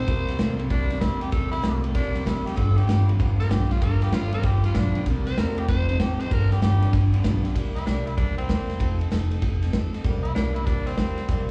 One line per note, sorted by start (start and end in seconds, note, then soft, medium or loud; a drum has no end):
0.00 0.58 C5 loud
0.07 0.34 C2 loud
0.07 0.27 C3 medium
0.07 0.26 C3 medium
0.07 0.28 G3 medium
0.07 0.26 G3 loud
0.07 0.28 A#3 medium
0.07 0.28 E4 medium
0.07 0.26 G4 medium
0.07 kick loud
0.07 ride medium
0.27 0.38 C3 medium
0.27 0.38 G3 medium
0.27 0.39 E4 medium
0.27 0.38 G4 medium
0.27 snare soft
0.27 ride medium
0.31 0.39 A#3 soft
0.38 0.65 C2 loud
0.38 0.59 C3 medium
0.38 0.57 C3 medium
0.38 0.59 G3 loud
0.38 0.57 A3 medium
0.38 0.59 A#3 loud
0.38 0.59 E4 loud
0.38 0.57 G4 loud
0.38 snare loud
0.38 ride medium
0.58 0.69 C3 medium
0.58 0.69 A3 medium
0.58 0.69 A#3 medium
0.58 0.70 E4 medium
0.58 0.70 G4 medium
0.58 ride medium
0.68 0.96 C2 medium
0.68 0.88 C3 medium
0.68 0.89 G3 medium
0.68 0.89 G3 loud
0.68 0.90 A#3 medium
0.68 1.00 D4 loud
0.68 0.90 E4 medium
0.68 0.88 G4 medium
0.68 kick loud
0.68 ride medium
0.89 1.00 C3 medium
0.89 1.01 G3 medium
0.89 1.01 A#3 soft
0.89 1.01 E4 medium
0.89 1.01 G4 medium
0.89 snare soft
0.89 ride medium
1.01 1.28 E2 loud
1.01 1.21 C3 medium
1.01 1.20 C3 medium
1.01 1.21 G3 medium
1.01 1.20 G3 medium
1.01 1.22 A#3 medium
1.01 1.21 E4 loud
1.01 1.21 E4 medium
1.01 1.19 G4 medium
1.01 kick medium
1.01 snare loud
1.01 ride medium
1.20 1.32 C3 medium
1.20 1.32 G3 medium
1.20 1.31 A#3 soft
1.20 1.32 E4 soft
1.20 1.32 G4 medium
1.20 1.32 G4 loud
1.20 ride medium
1.31 1.59 C2 medium
1.31 1.52 C3 medium
1.31 1.51 C3 medium
1.31 1.53 G3 medium
1.31 1.51 G3 medium
1.31 1.53 A#3 medium
1.31 1.52 E4 medium
1.31 1.50 G4 loud
1.31 1.52 A4 medium
1.31 kick loud
1.31 ride medium
1.51 1.62 C3 medium
1.51 1.63 G3 medium
1.51 1.62 A#3 soft
1.51 1.83 E4 loud
1.51 1.62 E4 medium
1.51 1.63 G4 medium
1.51 snare soft
1.51 ride medium
1.62 1.90 C2 loud
1.62 1.83 C3 medium
1.62 1.82 C3 medium
1.62 1.83 G3 medium
1.62 1.82 A3 medium
1.62 1.83 A#3 medium
1.62 1.82 E4 loud
1.62 1.80 G4 medium
1.62 snare loud
1.62 ride medium
1.82 1.94 C3 medium
1.82 1.94 A3 medium
1.82 1.93 A#3 soft
1.82 1.94 E4 medium
1.82 1.94 G4 medium
1.82 ride medium
1.93 2.21 C2 loud
1.93 2.13 C3 medium
1.93 2.14 G3 medium
1.93 2.13 G3 loud
1.93 2.15 A#3 medium
1.93 2.25 D4 loud
1.93 2.14 E4 medium
1.93 2.12 G4 medium
1.93 kick loud
1.93 snare soft
1.93 ride loud
2.13 2.24 C3 medium
2.13 2.25 G3 medium
2.13 2.25 A#3 medium
2.13 2.26 E4 medium
2.13 2.25 G4 medium
2.13 snare soft
2.13 ride medium
2.25 2.52 F#1 medium
2.25 2.46 C3 medium
2.25 2.44 C3 medium
2.25 2.46 G3 medium
2.25 2.44 G3 loud
2.25 2.46 A#3 medium
2.25 2.48 E4 medium
2.25 2.46 E4 medium
2.25 2.44 G4 medium
2.25 kick medium
2.25 snare loud
2.25 ride medium
2.45 2.57 C3 medium
2.45 2.57 G3 medium
2.45 2.57 A#3 soft
2.45 2.57 E4 medium
2.45 2.57 G4 medium
2.45 2.59 G4 medium
2.45 snare soft
2.45 ride medium
2.56 2.83 G1 medium
2.56 2.77 G2 medium
2.56 2.75 G2 medium
2.56 2.77 D3 medium
2.56 2.76 D3 medium
2.56 2.77 F3 medium
2.56 2.77 B3 medium
2.56 2.76 F4 medium
2.56 2.75 G4 medium
2.56 2.79 A4 loud
2.56 kick loud
2.56 ride medium
2.76 2.87 G2 medium
2.76 2.88 D3 medium
2.76 2.88 F3 soft
2.76 2.89 B3 medium
2.76 2.88 F4 soft
2.76 2.88 G4 medium
2.76 3.08 G4 loud
2.76 ride medium
2.87 3.14 G1 loud
2.87 3.08 G2 medium
2.87 3.07 G2 medium
2.87 3.09 D3 medium
2.87 3.07 E3 loud
2.87 3.09 F3 medium
2.87 3.08 B3 medium
2.87 3.07 F4 medium
2.87 3.06 G4 loud
2.87 snare loud
2.87 ride medium
3.07 3.18 G2 medium
3.07 3.19 E3 medium
3.07 3.17 F3 soft
3.07 3.19 B3 medium
3.07 3.19 F4 medium
3.07 3.19 G4 medium
3.07 ride medium
3.19 3.45 G1 loud
3.19 3.38 G2 medium
3.19 3.38 D3 loud
3.19 3.39 F3 medium
3.19 3.40 B3 medium
3.19 3.38 F4 medium
3.19 3.37 G4 medium
3.19 kick loud
3.19 ride medium
3.38 3.50 G2 medium
3.38 3.50 D3 medium
3.38 3.50 F3 soft
3.38 3.50 B3 medium
3.38 3.50 F4 medium
3.38 3.50 G4 medium
3.38 3.52 A#4 loud
3.38 snare soft
3.38 ride medium
3.50 3.77 B1 medium
3.50 3.70 G2 medium
3.50 3.69 G2 medium
3.50 3.71 D3 medium
3.50 3.69 D3 medium
3.50 3.71 F3 loud
3.50 3.70 B3 medium
3.50 3.69 F4 medium
3.50 3.73 G4 loud
3.50 3.67 G4 medium
3.50 kick medium
3.50 snare loud
3.50 ride medium
3.69 3.81 G2 medium
3.69 3.81 D3 medium
3.69 3.81 F3 soft
3.69 3.82 B3 medium
3.69 3.82 F4 medium
3.69 3.81 G4 medium
3.69 snare soft
3.69 ride medium
3.81 4.08 G1 medium
3.81 4.02 G2 medium
3.81 4.00 G2 medium
3.81 4.02 D3 medium
3.81 4.00 D3 loud
3.81 4.02 F3 medium
3.81 4.02 B3 loud
3.81 4.01 F4 medium
3.81 3.99 G4 loud
3.81 4.05 A#4 loud
3.81 kick loud
3.81 ride medium
4.01 4.12 G2 medium
4.01 4.12 D3 medium
4.01 4.12 F3 medium
4.01 4.13 B3 medium
4.01 4.13 F4 medium
4.01 4.12 G4 medium
4.01 4.16 G4 loud
4.01 snare soft
4.01 ride medium
4.12 4.39 G1 loud
4.12 4.33 G2 medium
4.12 4.31 G2 medium
4.12 4.33 D3 medium
4.12 4.31 E3 loud
4.12 4.33 F3 medium
4.12 4.33 B3 medium
4.12 4.32 F4 medium
4.12 4.33 F4 loud
4.12 4.30 G4 medium
4.12 snare loud
4.12 ride medium
4.32 4.43 G2 medium
4.32 4.43 E3 medium
4.32 4.42 F3 soft
4.32 4.44 B3 soft
4.32 4.44 F4 medium
4.32 4.43 G4 medium
4.32 4.47 A#4 loud
4.32 ride medium
4.43 4.70 G1 medium
4.43 4.63 G2 medium
4.43 4.63 D3 loud
4.43 4.64 F3 medium
4.43 4.65 B3 medium
4.43 4.64 F4 medium
4.43 4.64 G4 loud
4.43 4.63 G4 medium
4.43 kick loud
4.43 snare soft
4.43 ride loud
4.64 4.75 G2 medium
4.64 4.75 D3 medium
4.64 4.76 F3 soft
4.64 4.76 B3 soft
4.64 4.76 F4 medium
4.64 4.77 F4 loud
4.64 4.75 G4 medium
4.64 snare soft
4.64 ride medium
4.75 5.01 B1 loud
4.75 4.95 G2 medium
4.75 4.94 G2 medium
4.75 4.96 D3 medium
4.75 4.94 D3 loud
4.75 4.96 F3 loud
4.75 4.96 B3 loud
4.75 5.06 D4 loud
4.75 4.95 F4 medium
4.75 4.94 G4 medium
4.75 kick medium
4.75 snare loud
4.75 ride medium
4.95 5.06 G2 medium
4.95 5.06 D3 medium
4.95 5.06 F3 soft
4.95 5.07 B3 soft
4.95 5.07 F4 medium
4.95 5.06 G4 medium
4.95 ride medium
5.06 5.32 C2 loud
5.06 5.26 C3 medium
5.06 5.25 C3 medium
5.06 5.27 G3 medium
5.06 5.25 G3 loud
5.06 5.27 A#3 medium
5.06 5.26 E4 medium
5.06 5.24 G4 medium
5.06 kick loud
5.06 ride medium
5.26 5.36 C3 medium
5.26 5.37 G3 loud
5.26 5.37 A#3 soft
5.26 5.38 E4 medium
5.26 5.37 G4 medium
5.26 5.40 C5 loud
5.26 snare soft
5.26 ride medium
5.37 5.64 E2 loud
5.37 5.57 C3 medium
5.37 5.55 C3 loud
5.37 5.58 G3 medium
5.37 5.56 A3 loud
5.37 5.58 A#3 medium
5.37 5.57 E4 medium
5.37 5.56 G4 medium
5.37 5.60 A#4 loud
5.37 snare loud
5.37 ride medium
5.57 5.67 C3 medium
5.57 5.68 A3 medium
5.57 5.69 A#3 soft
5.57 5.69 E4 medium
5.57 5.68 G4 medium
5.57 5.69 G4 loud
5.57 ride medium
5.68 5.95 F1 loud
5.68 5.87 F2 loud
5.68 5.87 C3 loud
5.68 5.88 F3 medium
5.68 5.89 C4 medium
5.68 5.89 D#4 medium
5.68 5.87 A4 medium
5.68 5.88 C5 loud
5.68 kick loud
5.68 snare soft
5.68 ride medium
5.88 5.98 F2 medium
5.88 5.99 C3 medium
5.88 6.00 C4 soft
5.88 6.00 D#4 medium
5.88 6.00 A4 medium
5.88 6.00 C5 loud
5.88 ride medium
5.99 6.26 A1 medium
5.99 6.18 F2 medium
5.99 6.18 C3 loud
5.99 6.20 F3 medium
5.99 6.20 C4 medium
5.99 6.21 D#4 medium
5.99 6.22 G4 loud
5.99 6.19 A4 medium
5.99 kick medium
5.99 snare loud
5.99 ride medium
6.19 6.30 F2 medium
6.19 6.30 C3 medium
6.19 6.32 D#4 medium
6.19 6.31 A4 medium
6.19 6.34 C5 loud
6.19 snare soft
6.19 ride medium
6.24 6.32 C4 soft
6.30 6.57 G1 loud
6.30 6.51 G2 medium
6.30 6.49 G2 medium
6.30 6.51 D3 medium
6.30 6.49 D3 loud
6.30 6.51 F3 medium
6.30 6.52 B3 loud
6.30 6.51 D4 loud
6.30 6.50 G4 medium
6.30 6.54 A#4 loud
6.30 kick loud
6.30 ride medium
6.51 6.60 G2 medium
6.51 6.61 D3 medium
6.51 6.61 F3 medium
6.51 6.62 B3 medium
6.51 6.62 D4 soft
6.51 6.62 G4 medium
6.51 6.63 G4 loud
6.51 snare soft
6.51 ride medium
6.62 6.88 G1 medium
6.62 6.82 G2 medium
6.62 6.80 G2 medium
6.62 6.82 D3 medium
6.62 6.80 E3 loud
6.62 6.82 F3 medium
6.62 6.82 B3 medium
6.62 6.81 D4 loud
6.62 6.93 G4 loud
6.62 6.80 G4 medium
6.62 snare loud
6.62 ride medium
6.81 6.92 G2 medium
6.81 6.92 E3 medium
6.81 6.92 F3 soft
6.81 6.94 B3 medium
6.81 6.93 D4 medium
6.81 6.93 G4 medium
6.81 ride medium
6.93 7.19 G1 loud
6.93 7.11 G2 medium
6.93 7.11 D3 loud
6.93 7.13 F3 medium
6.93 7.14 B3 medium
6.93 7.13 D4 medium
6.93 7.11 G4 medium
6.93 kick loud
6.93 snare soft
6.93 ride loud
7.12 7.23 G2 medium
7.12 7.23 D3 medium
7.12 7.24 F3 medium
7.12 7.24 B3 medium
7.12 7.25 D4 medium
7.12 7.24 G4 medium
7.12 ride medium
7.24 7.55 B1 medium
7.24 7.42 G2 loud
7.24 7.44 G2 medium
7.24 7.42 D3 loud
7.24 7.44 D3 medium
7.24 7.45 F3 loud
7.24 7.45 B3 loud
7.24 7.44 D4 loud
7.24 7.42 G4 loud
7.24 kick medium
7.24 snare loud
7.24 ride medium
7.43 7.54 G2 medium
7.43 7.54 D3 medium
7.43 7.56 F3 medium
7.43 7.56 B3 medium
7.43 7.56 D4 medium
7.43 7.55 G4 medium
7.43 snare soft
7.43 ride medium
7.55 7.81 C2 medium
7.55 7.75 C3 medium
7.55 7.76 G3 medium
7.55 7.76 A#3 medium
7.55 7.75 E4 medium
7.55 7.74 G4 loud
7.55 kick loud
7.55 ride medium
7.75 7.87 A#3 soft
7.75 7.86 E4 medium
7.75 7.87 E4 medium
7.75 7.86 G4 medium
7.75 snare soft
7.75 ride medium
7.86 8.12 C2 loud
7.86 8.06 C3 medium
7.86 8.07 G3 medium
7.86 8.07 A#3 medium
7.86 8.09 D4 loud
7.86 8.07 E4 medium
7.86 8.05 G4 loud
7.86 snare loud
7.86 ride medium
8.06 8.17 A#3 soft
8.06 8.17 E4 medium
8.06 8.18 E4 soft
8.06 8.17 G4 medium
8.06 ride medium
8.17 8.43 C2 loud
8.17 8.37 G3 medium
8.17 8.38 A#3 medium
8.17 8.37 D4 loud
8.17 8.39 E4 medium
8.17 8.36 G4 medium
8.17 kick loud
8.17 ride medium
8.37 8.49 A#3 soft
8.37 8.98 C4 loud
8.37 8.50 E4 medium
8.37 8.49 G4 medium
8.37 ride medium
8.49 8.75 E2 medium
8.49 8.69 C3 medium
8.49 8.69 G3 medium
8.49 8.70 A#3 medium
8.49 8.69 E4 medium
8.49 8.68 G4 medium
8.49 kick medium
8.49 snare loud
8.49 ride medium
8.69 8.80 A#3 soft
8.69 8.81 E4 medium
8.69 8.80 G4 medium
8.69 snare soft
8.69 ride medium
8.79 9.06 F1 medium
8.79 9.00 F3 loud
8.79 9.00 C4 medium
8.79 8.99 D#4 loud
8.79 8.98 A4 medium
8.79 kick loud
8.79 ride medium
8.99 9.11 C4 soft
8.99 9.11 D#4 medium
8.99 9.10 A4 medium
8.99 ride medium
9.11 9.37 F1 medium
9.11 9.31 F3 loud
9.11 9.31 C4 loud
9.11 9.31 D#4 loud
9.11 9.29 A4 medium
9.11 snare loud
9.11 ride medium
9.30 9.42 C4 medium
9.30 9.43 D#4 medium
9.30 9.42 A4 medium
9.30 ride medium
9.41 9.68 F1 loud
9.41 9.62 F3 medium
9.41 9.63 C4 medium
9.41 9.62 D#4 medium
9.41 9.60 A4 medium
9.41 kick loud
9.41 ride loud
9.62 9.73 C4 medium
9.62 9.74 D#4 medium
9.62 9.73 A4 medium
9.62 snare soft
9.62 ride medium
9.73 9.99 D2 medium
9.73 9.93 F3 medium
9.73 9.94 C4 loud
9.73 9.94 D#4 loud
9.73 9.92 A4 medium
9.73 kick medium
9.73 snare loud
9.73 ride medium
9.93 10.05 C4 medium
9.93 10.05 D#4 medium
9.93 10.04 A4 medium
9.93 snare soft
9.93 ride medium
10.04 10.30 C2 loud
10.04 10.24 C3 loud
10.04 10.24 G3 medium
10.04 10.25 A#3 loud
10.04 10.24 E4 loud
10.04 10.22 G4 loud
10.04 kick loud
10.04 ride medium
10.23 10.35 A#3 soft
10.23 10.34 E4 loud
10.23 10.36 E4 medium
10.23 10.35 G4 medium
10.23 ride medium
10.35 10.61 C2 loud
10.35 10.55 C3 medium
10.35 10.56 G3 medium
10.35 10.56 A#3 medium
10.35 10.57 D4 loud
10.35 10.56 E4 medium
10.35 10.54 G4 medium
10.35 snare loud
10.35 ride medium
10.55 10.66 A#3 medium
10.55 10.68 E4 medium
10.55 10.67 E4 medium
10.55 10.66 G4 medium
10.55 ride medium
10.66 10.93 C2 medium
10.66 10.86 G3 medium
10.66 10.87 A#3 medium
10.66 10.88 D4 loud
10.66 10.88 E4 medium
10.66 10.86 G4 medium
10.66 kick loud
10.66 snare soft
10.66 ride medium
10.86 10.98 A#3 soft
10.86 11.47 C4 loud
10.86 10.99 E4 soft
10.86 10.98 G4 medium
10.86 snare soft
10.86 ride medium
10.97 11.23 E2 medium
10.97 11.18 C3 medium
10.97 11.18 G3 medium
10.97 11.18 A#3 medium
10.97 11.19 E4 medium
10.97 11.17 G4 medium
10.97 kick medium
10.97 snare loud
10.97 ride medium
11.18 11.30 E4 medium
11.18 11.29 G4 medium
11.18 snare soft
11.18 ride medium
11.22 11.30 A#3 soft
11.28 11.51 C2 loud
11.28 11.49 C3 medium
11.28 11.49 G3 loud
11.28 11.50 A#3 loud
11.28 11.49 E4 loud
11.28 11.47 G4 loud
11.28 kick loud
11.28 ride medium